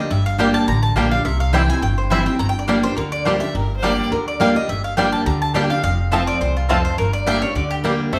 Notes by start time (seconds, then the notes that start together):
Already playing: G4
0.00 D4
0.10 G1 G2 E5
0.26 F5
0.38 G3 A#3 D4 G4 D5 G5
0.54 A5
0.68 A1 D3 A#5
0.83 A5
0.96 A#1 G3 A#3 D4 G4 D5 G5
1.11 D4 G4 F5
1.25 C2 C3 E5
1.40 F5
1.53 E3 G3 C4 E4 C5 G5
1.68 C4 E4 G#5
1.82 G1 G2 G5
1.98 C5
2.10 E3 G3 C4 E4 C5 E5 G5
2.26 C4 E4 G5
2.39 G1 G2 A#5
2.49 G5
2.59 D5
2.68 G3 A#3 D4 G4 A#4 D5 G5
2.83 D4 G4 C5
2.97 D2 D3 A#4
3.12 D5
3.25 G3 A#3 D4 G4 C5 D5 G5
3.40 D4 G4 E5
3.55 G1 G2 A#4
3.76 C5
3.82 G3 A#3 D4 G4 D5 G5
4.11 D2 D3 A#4
4.28 D5
4.40 G3 A#3 D4 G4 D5 F5 G5
4.55 D4 G4 D#5
4.69 G1 G2 E5
4.84 F5
4.97 G3 A#3 D4 G4 D5 G5
5.12 A5
5.26 D2 D3 A#5
5.42 A5
5.54 G3 A#3 D4 G4 D5 G5
5.70 D4 G4 F5
5.84 F1 F2 F5
6.11 F3 A3 C4 F4 C5 A5
6.27 D5
6.41 C2 E2 C5
6.57 F4
6.69 F2 A3 C4 F4 A4 C5 A5
6.85 C5
6.98 G1 G2 A#4
7.13 D5
7.26 G3 A#3 D4 G4 D5 E5 G5
7.42 D4 G4 C#5
7.55 D2 D3 D5
7.71 G4
7.84 G3 A#3 D4 G4 D5 G5
8.13 F1 F2 A3 C5